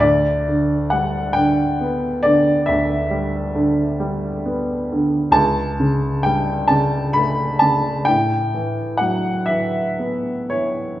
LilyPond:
<<
  \new Staff \with { instrumentName = "Upright piano" } { \time 12/8 \key a \mixolydian \tempo 4. = 44 d''4 fis''8 g''4 d''8 e''2~ e''8 r8 | a''4 g''8 a''8 b''8 a''8 g''4 fis''8 e''4 cis''8 | }
  \new Staff \with { instrumentName = "Upright piano" } { \clef bass \time 12/8 \key a \mixolydian d,8 d8 g8 d8 b8 d8 d,8 g8 d8 g8 b8 d8 | cis,8 cis8 g8 cis8 a8 cis8 a,8 e8 fis8 e8 b8 e8 | }
>>